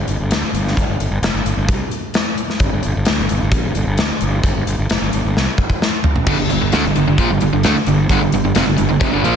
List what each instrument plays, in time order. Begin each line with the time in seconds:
0.08 fingered electric bass G1, closed hi-hat
0.20 fingered electric bass G1
0.31 fingered electric bass D2, snare, closed hi-hat
0.42 muted fingered electric bass stroke
0.53 fingered electric bass G1, closed hi-hat
0.67 snare
0.77 fingered electric bass G1, kick, closed hi-hat
0.88 fingered electric bass G1
1.00 fingered electric bass G1, closed hi-hat
1.11 fingered electric bass G1
1.22 fingered electric bass F1, snare, closed hi-hat
1.34 fingered electric bass G1
1.45 fingered electric bass G1, closed hi-hat
1.57 fingered electric bass G1
1.68 fingered electric bass C2, kick, closed hi-hat
1.91 closed hi-hat
2.14 snare, closed hi-hat
2.38 closed hi-hat
2.50 snare
2.60 fingered electric bass G1, kick, closed hi-hat
2.73 fingered electric bass G1
2.83 fingered electric bass G1, closed hi-hat
2.96 fingered electric bass G1
3.05 fingered electric bass D2, snare, closed hi-hat
3.20 fingered electric bass G1
3.29 fingered electric bass G1, closed hi-hat
3.42 fingered electric bass G1
3.52 fingered electric bass A#1, kick, closed hi-hat
3.64 fingered electric bass G1
3.75 fingered electric bass G1, closed hi-hat
3.87 fingered electric bass G1
3.98 fingered electric bass D2, snare, closed hi-hat
4.10 muted fingered electric bass stroke
4.21 fingered electric bass G1, closed hi-hat
4.44 fingered electric bass G1, kick, closed hi-hat
4.56 fingered electric bass G1
4.67 fingered electric bass G1, closed hi-hat
4.79 fingered electric bass G1
4.90 fingered electric bass F1, snare, closed hi-hat
5.02 fingered electric bass G1
5.13 fingered electric bass G1, closed hi-hat
5.25 fingered electric bass G1
5.36 fingered electric bass C2, snare
5.58 kick
5.70 kick
5.82 snare
6.04 floor tom
6.16 floor tom
6.27 fingered electric bass G1, overdriven electric guitar G2 D3, kick, closed hi-hat, crash
6.39 fingered electric bass G1, overdriven electric guitar G2 D3
6.50 fingered electric bass G1, overdriven electric guitar G2 D3, closed hi-hat
6.61 fingered electric bass G1, overdriven electric guitar G2 D3
6.72 fingered electric bass D2, overdriven electric guitar D3 A3, snare, closed hi-hat
6.84 fingered electric bass G1, overdriven electric guitar G2 D3
6.95 fingered electric bass G1, overdriven electric guitar G2 D3, closed hi-hat
7.07 fingered electric bass G1, overdriven electric guitar G2 D3
7.18 fingered electric bass A#1, overdriven electric guitar A#2 F3, kick, closed hi-hat
7.30 fingered electric bass G1, overdriven electric guitar G2 D3
7.40 fingered electric bass G1, overdriven electric guitar G2 D3, closed hi-hat
7.53 fingered electric bass G1, overdriven electric guitar G2 D3
7.63 fingered electric bass D2, overdriven electric guitar D3 A3, snare, closed hi-hat
7.76 muted fingered electric bass stroke, muted overdriven electric guitar stroke
7.86 fingered electric bass G1, overdriven electric guitar G2 D3, closed hi-hat
8.09 fingered electric bass G1, overdriven electric guitar G2 D3, kick, closed hi-hat
8.22 fingered electric bass G1, overdriven electric guitar G2 D3
8.32 fingered electric bass G1, overdriven electric guitar G2 D3, closed hi-hat
8.44 fingered electric bass G1, overdriven electric guitar G2 D3
8.55 fingered electric bass F1, overdriven electric guitar F2 C3, snare, closed hi-hat
8.66 fingered electric bass G1, overdriven electric guitar G2 D3
8.77 fingered electric bass G1, overdriven electric guitar G2 D3, closed hi-hat
8.89 fingered electric bass G1, overdriven electric guitar G2 D3
9.00 fingered electric bass F1, overdriven electric guitar F2 C3, kick, closed hi-hat
9.12 fingered electric bass G1, overdriven electric guitar G2 D3
9.23 fingered electric bass A#1, overdriven electric guitar A#2 F3 A#3, closed hi-hat